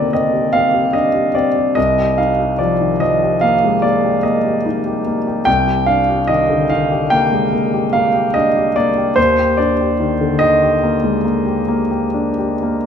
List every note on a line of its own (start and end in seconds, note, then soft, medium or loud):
0.00 1.73 C2 soft
0.00 1.79 D3 soft
0.00 1.79 D#3 soft
0.00 0.13 A#3 soft
0.00 0.14 C4 soft
0.00 0.94 D4 soft
0.00 0.33 G4 soft
0.00 0.12 D5 medium
0.00 0.13 D#5 medium
0.00 0.53 F5 medium
0.13 0.46 C4 soft
0.13 0.54 D#5 medium
0.33 0.66 G4 soft
0.53 0.86 C4 soft
0.53 0.94 F5 medium
0.74 1.06 G4 soft
0.93 1.27 D4 soft
0.93 1.35 D#5 medium
1.14 1.48 G4 soft
1.35 1.69 C4 soft
1.35 1.77 D5 medium
1.56 1.77 G4 soft
1.75 5.43 C2 soft
1.75 2.18 D#5 medium
1.98 2.31 G4 soft
2.18 2.52 D#4 soft
2.18 2.59 F5 medium
2.40 2.72 G4 soft
2.59 2.92 F3 soft
2.59 3.00 D5 medium
2.81 3.01 D#3 soft
3.00 3.33 F3 soft
3.00 3.41 D#5 medium
3.22 3.54 G4 soft
3.41 3.75 A#3 soft
3.41 3.83 F5 medium
3.64 3.84 G#3 soft
3.82 4.16 A#3 soft
3.82 4.24 D5 medium
4.04 4.37 G4 soft
4.23 4.57 A#3 soft
4.23 4.65 D#5 medium
4.45 4.78 G4 soft
4.66 4.98 D#4 soft
4.86 5.18 G4 soft
5.07 5.39 A#3 soft
5.27 5.47 G4 soft
5.45 9.13 C2 soft
5.45 5.87 G5 medium
5.67 6.00 G4 soft
5.86 6.21 D4 soft
5.86 6.29 F5 medium
6.09 6.42 G4 soft
6.27 6.62 D#3 soft
6.27 6.70 D#5 medium
6.49 6.70 D3 soft
6.70 7.03 D#3 soft
6.70 7.11 F5 medium
6.91 7.24 G4 soft
7.10 7.44 A#3 soft
7.10 7.92 G5 medium
7.32 7.52 G#3 soft
7.53 7.85 A#3 soft
7.74 8.06 G4 soft
7.93 8.26 A#3 soft
7.93 8.34 F5 medium
8.14 8.47 G4 soft
8.34 8.68 D4 soft
8.34 8.75 D#5 medium
8.56 8.88 G4 soft
8.76 9.09 A#3 soft
8.76 9.17 D5 medium
8.97 9.18 G4 soft
9.16 12.86 D#2 soft
9.16 9.58 C5 medium
9.39 9.71 G4 soft
9.57 9.92 D4 soft
9.57 10.40 D5 medium
9.80 10.13 G4 soft
10.00 10.33 D#3 soft
10.21 10.41 D3 soft
10.39 10.74 D#3 soft
10.39 12.86 D#5 medium
10.63 10.95 G4 soft
10.83 11.16 A#3 soft
11.04 11.25 G#3 soft
11.24 11.59 A#3 soft
11.46 11.81 G4 soft
11.68 12.05 A#3 soft
11.90 12.29 G4 soft
12.14 12.53 D4 soft
12.38 12.77 G4 soft
12.63 12.86 A#3 soft